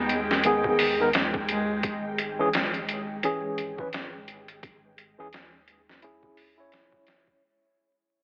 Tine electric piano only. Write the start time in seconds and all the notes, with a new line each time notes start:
0.45 D#3 B3 G#4
1.00 D#3 B3 A#4
2.39 E3 C#4 G#4
3.24 E3 C#4 G#4
3.79 E3 C#4 B4
5.19 E3 C#4 G#4
6.02 C#4 E4 G#4
6.58 C#4 E4 C#5